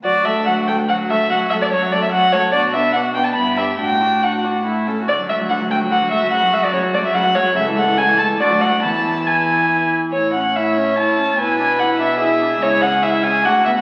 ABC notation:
X:1
M:3/4
L:1/16
Q:1/4=144
K:D
V:1 name="Violin"
d2 e2 f2 g2 f2 e2 | f2 e d c2 d e f2 c2 | d2 e2 f2 g a b2 e2 | g4 f4 z4 |
d2 e2 f2 g2 f2 e2 | f2 e d c2 d e f2 c2 | [K:A] e2 f2 g2 a2 d2 f2 | a4 g6 z2 |
c2 f2 e4 a4 | g4 f2 e2 e4 | c2 f2 e2 g2 f2 e f |]
V:2 name="Violin"
F2 A2 F2 A2 F2 A2 | F2 A2 F2 A2 F2 A2 | F2 D2 F2 D2 E2 G2 | D2 F2 D2 F2 E2 A2 |
F12- | F12 | [K:A] A8 F4 | E8- E2 z2 |
z4 c8 | B8 G4- | G8 F4 |]
V:3 name="Viola" clef=bass
F,2 A,2 F,2 A,2 F,2 A,2 | F,2 A,2 F,2 A,2 F,2 A,2 | D2 B,2 D2 B,2 B,2 D2 | F2 D2 F2 D2 A,2 C2 |
D, F, A, F, D, F, A, F, D, F, A, F, | C, F, A, F, C, F, A, F, C, F, A, F, | [K:A] C, E, A, E, C, E, A, E, D, F, A, F, | E, E, E, E, E, E, E, E, E, E, E, E, |
E2 C2 E2 C2 E2 C2 | E2 D2 E2 D2 E2 D2 | E2 C2 E2 C2 D2 B,2 |]
V:4 name="Cello" clef=bass
D,,12 | F,,12 | B,,8 G,,4 | A,,8- A,,2 z2 |
D,,12 | F,,12 | [K:A] C,,8 D,,4 | E,,8- E,,2 z2 |
A,,12 | B,,12 | C,,8 D,,4 |]